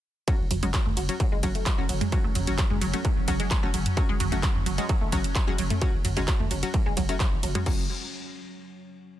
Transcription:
0.28 ambient pad F#3 C#4, synth arpeggio sound F#3, synth stab F#3 C#4 F#4, kick, closed hi-hat, ride
0.40 808-style bass F#1
0.51 808-style bass F#1, synth arpeggio sound F#3, mid tom, open hi-hat, ride
0.63 808-style bass F#1, synth stab F#3 C#4 F#4, synth arpeggio sound G#3, closed hi-hat
0.74 synth arpeggio sound F#3, kick, clap, closed hi-hat, ride
0.86 808-style bass F#1, synth arpeggio sound A3, mid tom
0.97 808-style bass F#1, synth arpeggio sound F#3, open hi-hat, ride
1.09 synth stab F#3 C#4 F#4, closed hi-hat
1.20 synth arpeggio sound F#3, kick, closed hi-hat, ride
1.32 808-style bass F#1, synth arpeggio sound G#3
1.43 808-style bass F#1, synth arpeggio sound F#3, synth stab F#3 C#4 F#4, kick, open hi-hat, ride
1.55 synth arpeggio sound A3, closed hi-hat
1.66 synth arpeggio sound F#3, kick, clap, closed hi-hat, ride
1.78 808-style bass F#1, synth stab F#3 C#4 F#4
1.89 808-style bass F#1, synth arpeggio sound F#3, open hi-hat, ride
2.01 synth arpeggio sound G#3, closed hi-hat, mid tom
2.12 synth stab F#3 C#4 F#4, synth arpeggio sound F#3, kick, closed hi-hat, ride
2.24 808-style bass F#1, synth arpeggio sound A3
2.35 808-style bass F#1, synth arpeggio sound F#3, mid tom, open hi-hat, ride
2.47 808-style bass F#1, synth stab F#3 C#4 F#4, closed hi-hat
2.58 synth arpeggio sound F#3, kick, clap, closed hi-hat, ride
2.70 808-style bass F#1, synth arpeggio sound G#3, mid tom
2.81 808-style bass F#1, synth arpeggio sound F#3, open hi-hat, ride
2.94 synth stab F#3 C#4 F#4, synth arpeggio sound A3, closed hi-hat
3.05 synth arpeggio sound F#3, kick, closed hi-hat, ride
3.17 808-style bass F#1
3.28 808-style bass F#1, synth arpeggio sound F#3, synth stab F#3 C#4 F#4, kick, open hi-hat, ride
3.40 synth arpeggio sound G#3, closed hi-hat
3.51 synth arpeggio sound F#3, kick, clap, closed hi-hat, ride
3.63 808-style bass F#1, synth stab F#3 C#4 F#4, synth arpeggio sound A3
3.74 808-style bass F#1, synth arpeggio sound F#3, open hi-hat, ride
3.86 closed hi-hat, mid tom
3.97 synth arpeggio sound F#3, synth stab F#3 C#4 F#4, kick, closed hi-hat, ride
4.09 808-style bass F#1, synth arpeggio sound G#3
4.20 808-style bass F#1, synth arpeggio sound F#3, mid tom, open hi-hat, ride
4.32 808-style bass F#1, synth stab F#3 C#4 F#4, synth arpeggio sound A3, closed hi-hat
4.43 synth arpeggio sound F#3, kick, clap, closed hi-hat, ride
4.55 808-style bass F#1, mid tom
4.66 808-style bass F#1, synth arpeggio sound F#3, open hi-hat, ride
4.78 synth stab F#3 C#4 F#4, synth arpeggio sound G#3, closed hi-hat
4.89 synth arpeggio sound F#3, kick, closed hi-hat, ride
5.01 808-style bass F#1, synth arpeggio sound A3
5.12 808-style bass F#1, synth stab F#3 C#4 F#4, synth arpeggio sound F#3, kick, open hi-hat, ride
5.24 closed hi-hat
5.35 synth arpeggio sound F#3, kick, clap, closed hi-hat, ride
5.47 808-style bass F#1, synth stab F#3 C#4 F#4, synth arpeggio sound G#3
5.58 808-style bass F#1, synth arpeggio sound F#3, open hi-hat, ride
5.70 synth arpeggio sound A3, closed hi-hat, mid tom
5.82 synth stab F#3 C#4 F#4, synth arpeggio sound F#3, kick, closed hi-hat, ride
5.94 808-style bass F#1
6.05 808-style bass F#1, synth arpeggio sound F#3, mid tom, open hi-hat, ride
6.17 808-style bass F#1, synth stab F#3 C#4 F#4, synth arpeggio sound G#3, closed hi-hat
6.28 synth arpeggio sound F#3, kick, clap, closed hi-hat, ride
6.40 808-style bass F#1, synth arpeggio sound A3, mid tom
6.51 808-style bass F#1, synth arpeggio sound F#3, open hi-hat, ride
6.63 synth stab F#3 C#4 F#4, closed hi-hat
6.74 synth arpeggio sound F#3, kick, closed hi-hat, ride
6.86 808-style bass F#1, synth arpeggio sound G#3
6.97 808-style bass F#1, synth arpeggio sound F#3, kick, open hi-hat, ride
7.09 synth stab F#3 C#4 F#4, synth arpeggio sound A3, closed hi-hat
7.20 synth arpeggio sound F#3, kick, clap, closed hi-hat, ride
7.32 808-style bass F#1
7.43 808-style bass F#1, synth arpeggio sound F#3, open hi-hat, ride
7.55 synth stab F#3 C#4 F#4, synth arpeggio sound G#3, closed hi-hat, mid tom
7.66 808-style bass F#1, synth stab F#3 C#4 F#4, synth arpeggio sound F#3, kick, crash

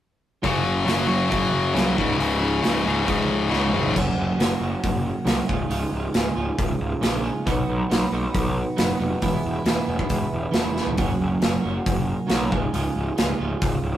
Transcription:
0.42 picked electric bass F#1, clean electric guitar F#2 C#3 F#3, kick, open hi-hat
0.65 clean electric guitar F#2 C#3
0.86 picked electric bass F#1, clean electric guitar F#2 C#3, distorted electric guitar F#3, snare, open hi-hat
1.08 picked electric bass F#1, clean electric guitar F#2 C#3 F#3
1.30 picked electric bass F#1, clean electric guitar F#2 C#3, distorted electric guitar F#3, kick, open hi-hat
1.52 picked electric bass F#1, clean electric guitar F#2 C#3
1.74 picked electric bass C2, clean electric guitar F#2 C#3 F#3, snare, open hi-hat
1.96 picked electric bass C#1, clean electric guitar C#2 G#2 C#3, kick
2.18 picked electric bass C#1, clean electric guitar C#2 G#2, distorted electric guitar C#3, open hi-hat
2.41 clean electric guitar C#2 G#2 C#3
2.62 picked electric bass C#1, clean electric guitar C#2 G#2, distorted electric guitar C#3, snare, open hi-hat
2.85 picked electric bass C#1, clean electric guitar C#2 G#2, distorted electric guitar C#3
3.07 picked electric bass C#1, clean electric guitar C#2 G#2 C#3, kick, open hi-hat
3.29 picked electric bass C#1, clean electric guitar C#2 G#2
3.50 picked electric bass C#2, clean electric guitar C#2 G#2, distorted electric guitar C#3, snare
3.64 high tom
3.73 picked electric bass G#1, clean electric guitar C#2 G#2, distorted electric guitar C#3, mid tom
3.85 floor tom
3.95 picked electric bass F#1, clean electric guitar F#2 C#3 F#3 A#3 C#4 F#4, kick, crash
4.18 picked electric bass F#1
4.38 picked electric bass F#1, clean electric guitar F#3 A#3 C#4 F#4, snare, open hi-hat
4.59 picked electric bass F#1, clean electric guitar F#3 A#3 C#4 F#4
4.84 picked electric bass F#1, kick, open hi-hat
5.25 picked electric bass C2, clean electric guitar F#2 C#3 F#3 A#3 C#4 F#4, snare, open hi-hat
5.47 picked electric bass C#1, clean electric guitar C#2 G#2 C#3 G#3 F4, kick
5.68 picked electric bass C#1, clean electric guitar C#2 G#2 C#3 G#3 F4, open hi-hat
5.92 picked electric bass C#1
6.12 picked electric bass C#1, clean electric guitar G#2 C#3 G#3 F4, snare, open hi-hat
6.35 picked electric bass C#1, clean electric guitar C#3 G#3 F4
6.59 picked electric bass C#1, kick, open hi-hat
6.80 picked electric bass C#1
7.01 picked electric bass A#1, clean electric guitar C#2 G#2 C#3 G#3 F4, snare, open hi-hat
7.24 clean electric guitar C#3 G#3 F4
7.46 picked electric bass B1, clean electric guitar B2 F#3 B3 D#4 F#4 B4, kick, open hi-hat
7.69 picked electric bass B1
7.90 picked electric bass B1, clean electric guitar B3 D#4 F#4 B4, snare, open hi-hat
8.12 picked electric bass B1, clean electric guitar B3 D#4 F#4 B4
8.34 picked electric bass B1, kick, open hi-hat
8.77 picked electric bass F#1, clean electric guitar B2 F#3 B3 D#4 F#4 B4, snare, open hi-hat
9.00 picked electric bass F1, clean electric guitar B3 D#4 F#4 B4
9.21 picked electric bass E1, clean electric guitar E2 B2 E3 G#3 B3 E4, kick, open hi-hat
9.45 picked electric bass E1
9.64 picked electric bass E1, clean electric guitar E3 G#3 B3 E4, snare, open hi-hat
9.86 picked electric bass E1, clean electric guitar E3 G#3 B3 E4
9.99 kick
10.10 picked electric bass E1, kick, open hi-hat
10.33 picked electric bass E1
10.51 picked electric bass E1, clean electric guitar E2 B2 E3 G#3 B3 E4, snare, open hi-hat
10.74 clean electric guitar E3 G#3 B3 E4, snare
10.87 floor tom
10.96 picked electric bass F#1, clean electric guitar F#2 C#3 F#3 A#3 C#4 F#4, kick, open hi-hat
11.21 picked electric bass F#1
11.40 picked electric bass F#1, clean electric guitar F#3 A#3 C#4 F#4, snare, open hi-hat
11.61 clean electric guitar F#3 A#3 C#4 F#4
11.66 picked electric bass F#1
11.86 picked electric bass F#1, kick, open hi-hat
12.27 picked electric bass B1, clean electric guitar F#2 C#3 F#3 A#3 C#4 F#4, snare, open hi-hat
12.50 picked electric bass C#1, clean electric guitar C#2 G#2 C#3 G#3 F4, kick
12.72 picked electric bass C#1, clean electric guitar C#2 G#2 C#3 G#3 F4, open hi-hat
12.96 picked electric bass C#1
13.16 picked electric bass C#1, clean electric guitar G#2 C#3 G#3 F4, snare, open hi-hat
13.38 picked electric bass C#1, clean electric guitar C#3 G#3 F4
13.62 picked electric bass C#1, kick, open hi-hat
13.82 picked electric bass C#1

